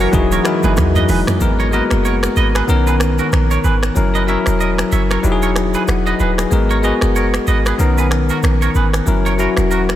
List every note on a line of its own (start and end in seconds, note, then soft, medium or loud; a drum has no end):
0.00 0.12 E3 medium
0.00 0.12 F#3 medium
0.00 0.12 C#4 medium
0.00 0.15 C#4 medium
0.00 0.14 E4 medium
0.00 1.38 F#4 loud
0.00 0.15 A#4 medium
0.00 0.08 A#4 medium
0.00 0.30 C#5 medium
0.00 0.07 C#5 medium
0.00 0.15 F#5 medium
0.00 0.16 G#5 medium
0.00 shaker medium
0.12 0.39 E1 loud
0.12 1.40 E3 medium
0.12 0.39 F#3 loud
0.12 1.40 G#3 medium
0.12 0.40 D#4 medium
0.12 0.40 E4 medium
0.12 0.40 G#4 loud
0.12 1.40 D#5 medium
0.12 kick loud
0.12 low conga medium
0.12 shaker medium
0.32 0.40 A#4 medium
0.32 0.39 C#5 medium
0.32 high conga medium
0.32 shaker medium
0.44 1.21 F#3 medium
0.44 1.21 D#4 medium
0.44 1.21 E4 medium
0.44 1.22 A#4 medium
0.44 finger snap medium
0.44 cross-stick medium
0.44 shaker medium
0.63 0.79 F#1 medium
0.63 0.72 G#4 medium
0.63 0.71 B4 medium
0.63 high conga medium
0.63 shaker medium
0.77 1.03 E2 loud
0.77 finger snap medium
0.77 kick medium
0.77 cross-stick loud
0.77 low conga medium
0.77 shaker medium
0.95 1.03 B4 medium
0.95 1.03 D#5 medium
0.95 mid tom medium
0.95 high conga medium
0.95 shaker medium
1.09 1.24 E1 medium
1.09 1.20 G#4 medium
1.09 1.19 B4 medium
1.09 open hi-hat medium
1.09 low conga medium
1.09 shaker medium
1.27 finger snap medium
1.27 cross-stick medium
1.27 mid tom loud
1.27 high conga medium
1.27 shaker medium
1.39 1.81 G#1 loud
1.39 1.66 G#3 medium
1.39 1.66 B3 medium
1.39 1.67 F#4 medium
1.39 1.67 A#4 medium
1.39 shaker medium
1.60 1.67 A#4 medium
1.60 1.67 C#5 medium
1.60 shaker soft
1.71 2.68 G#3 medium
1.71 1.80 A#3 medium
1.71 2.69 F#4 medium
1.71 2.68 A#4 medium
1.71 1.83 B4 medium
1.71 1.83 D#5 medium
1.71 shaker medium
1.79 2.67 B3 medium
1.90 2.28 F#1 medium
1.90 finger snap medium
1.90 cross-stick medium
1.90 shaker medium
2.05 2.15 A#4 medium
2.05 2.15 C#5 medium
2.05 shaker medium
2.23 finger snap medium
2.23 cross-stick loud
2.23 shaker medium
2.36 2.62 G#1 medium
2.36 2.47 B4 medium
2.36 2.46 D#5 medium
2.36 shaker medium
2.55 2.63 G#4 medium
2.55 2.62 B4 medium
2.55 finger snap medium
2.55 cross-stick medium
2.55 shaker medium
2.67 3.20 B1 loud
2.67 3.71 D#3 medium
2.67 3.71 B3 medium
2.67 3.72 C#4 medium
2.67 3.72 A#4 loud
2.67 shaker medium
2.87 2.95 G#4 medium
2.87 2.94 B4 medium
2.87 shaker medium
3.00 finger snap medium
3.00 cross-stick medium
3.00 shaker soft
3.18 3.27 F#4 medium
3.18 3.26 A#4 medium
3.18 shaker medium
3.32 3.58 A#1 medium
3.32 finger snap medium
3.32 cross-stick medium
3.32 shaker medium
3.51 3.58 A#4 medium
3.51 3.58 C#5 medium
3.51 shaker medium
3.64 3.90 G#1 medium
3.64 3.75 G#4 medium
3.64 3.74 B4 medium
3.64 shaker medium
3.83 finger snap medium
3.83 cross-stick medium
3.83 shaker medium
3.95 4.37 F#1 loud
3.95 4.21 F#3 medium
3.95 4.22 C#4 medium
3.95 4.22 E4 medium
3.95 4.23 A#4 medium
3.95 shaker medium
4.15 4.22 B4 medium
4.15 4.22 D#5 medium
4.15 shaker soft
4.27 5.22 F#3 medium
4.27 5.24 C#4 medium
4.27 5.23 E4 medium
4.27 5.25 A#4 medium
4.27 4.39 C#5 medium
4.27 4.38 E5 medium
4.27 shaker medium
4.46 4.83 E1 medium
4.46 finger snap medium
4.46 cross-stick medium
4.46 shaker medium
4.61 4.71 A#4 medium
4.61 4.70 D#5 medium
4.61 shaker medium
4.78 finger snap medium
4.78 cross-stick loud
4.78 shaker medium
4.92 5.18 F#1 medium
4.92 5.02 C#5 medium
4.92 5.02 E5 medium
4.92 shaker medium
5.11 5.18 A#4 medium
5.11 5.18 C#5 medium
5.11 finger snap medium
5.11 cross-stick medium
5.11 shaker medium
5.23 5.75 E1 loud
5.23 6.26 F#3 medium
5.23 6.27 D#4 medium
5.23 6.27 E4 medium
5.23 5.32 G4 medium
5.23 shaker medium
5.32 5.92 G#4 loud
5.42 5.50 A#4 medium
5.42 5.50 C#5 medium
5.42 shaker medium
5.56 finger snap medium
5.56 cross-stick medium
5.56 shaker medium
5.74 5.82 G#4 medium
5.74 5.82 B4 medium
5.74 shaker medium
5.88 6.13 E1 loud
5.88 6.05 F#5 medium
5.88 finger snap medium
5.88 cross-stick medium
5.88 shaker medium
6.06 6.14 B4 medium
6.06 6.19 D#5 medium
6.06 6.14 D#5 medium
6.06 shaker soft
6.20 6.45 D#1 medium
6.20 6.30 G#4 medium
6.20 6.37 B4 medium
6.20 6.30 B4 medium
6.20 shaker medium
6.38 6.69 G#4 medium
6.38 finger snap medium
6.38 cross-stick medium
6.38 shaker medium
6.50 6.92 G#1 loud
6.50 6.77 G#3 medium
6.50 6.77 B3 medium
6.50 6.78 F#4 medium
6.50 6.78 A#4 medium
6.50 shaker medium
6.70 6.78 A#4 medium
6.70 6.77 C#5 medium
6.70 shaker soft
6.82 7.79 G#3 medium
6.82 7.78 B3 medium
6.82 7.79 F#4 medium
6.82 7.80 G#4 medium
6.82 6.94 B4 medium
6.82 6.93 D#5 medium
6.82 shaker medium
7.01 7.38 F#1 medium
7.01 finger snap medium
7.01 cross-stick medium
7.01 shaker medium
7.16 7.26 A#4 medium
7.16 7.25 C#5 medium
7.16 shaker medium
7.34 finger snap medium
7.34 cross-stick loud
7.34 shaker medium
7.47 7.73 G#1 medium
7.47 7.58 B4 medium
7.47 7.57 D#5 medium
7.47 shaker medium
7.66 7.74 G#4 medium
7.66 7.73 B4 medium
7.66 finger snap medium
7.66 cross-stick medium
7.66 shaker medium
7.78 8.31 B1 loud
7.78 8.82 D#3 medium
7.78 8.82 B3 medium
7.78 8.83 C#4 medium
7.78 8.83 A#4 loud
7.78 shaker medium
7.98 8.06 G#4 medium
7.98 8.05 B4 medium
7.98 shaker medium
8.11 finger snap medium
8.11 cross-stick medium
8.11 shaker soft
8.29 8.38 F#4 medium
8.29 8.37 A#4 medium
8.29 shaker soft
8.43 8.69 A#1 loud
8.43 finger snap medium
8.43 cross-stick medium
8.43 shaker medium
8.62 8.70 A#4 medium
8.62 8.69 C#5 medium
8.62 shaker soft
8.75 9.01 G#1 medium
8.75 8.86 G#4 medium
8.75 8.85 B4 medium
8.75 shaker medium
8.93 finger snap medium
8.93 cross-stick medium
8.93 shaker medium
9.06 9.47 F#1 loud
9.06 9.32 F#3 medium
9.06 9.33 C#4 medium
9.06 9.33 E4 medium
9.06 9.34 A#4 medium
9.06 shaker medium
9.26 9.33 A#4 medium
9.26 9.33 C#5 medium
9.26 shaker soft
9.38 9.96 F#3 medium
9.38 9.96 C#4 medium
9.38 9.96 E4 medium
9.38 9.96 F#4 medium
9.38 9.50 F#4 medium
9.38 9.49 A#4 medium
9.38 shaker medium
9.57 9.94 E1 medium
9.57 finger snap medium
9.57 cross-stick medium
9.57 shaker medium
9.71 9.81 F#4 medium
9.71 9.81 A#4 medium
9.71 shaker medium
9.89 finger snap medium
9.89 cross-stick loud
9.89 shaker medium